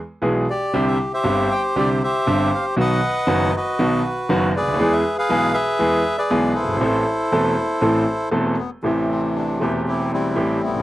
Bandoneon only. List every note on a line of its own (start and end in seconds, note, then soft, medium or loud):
0.50 1.12 G4 medium
0.50 0.85 D5 medium
0.87 0.99 E5 medium
1.14 1.77 G4 medium
1.14 2.02 C5 medium
1.14 1.53 E5 medium
1.51 1.63 G5 medium
1.78 2.03 G4 medium
1.78 1.89 D5 medium
2.03 2.75 G4 medium
2.03 2.75 C5 medium
2.03 2.50 E5 medium
2.54 2.66 F5 medium
2.80 3.55 B4 medium
2.80 3.56 D#5 medium
2.80 3.51 F#5 loud
3.56 4.52 F#4 medium
3.56 4.52 B4 medium
3.56 4.03 D#5 medium
4.56 5.17 G#4 medium
4.56 5.17 B4 medium
4.56 4.94 D5 loud
4.93 5.16 E5 medium
5.18 5.53 G#4 medium
5.18 5.53 B4 medium
5.18 5.56 F5 loud
5.54 6.17 G#4 medium
5.54 6.17 B4 medium
5.54 6.19 E5 loud
6.18 6.77 G#4 medium
6.18 6.77 B4 medium
6.18 6.53 D5 medium
6.55 8.29 E4 medium
6.55 8.29 A4 medium
6.55 8.29 C5 medium
8.59 8.70 B3 medium
8.84 9.82 C3 soft
8.84 9.82 E3 soft
8.84 9.08 A3 medium
9.10 9.22 C4 medium
9.35 9.59 D4 medium
9.61 9.73 E4 medium
9.88 10.12 C4 soft
9.88 10.12 E4 soft
9.88 10.11 G4 medium
10.13 10.82 G3 medium
10.13 10.82 C4 medium
10.13 10.62 E4 medium
10.63 10.82 A3 medium
10.63 10.82 B3 medium
10.63 10.82 E4 medium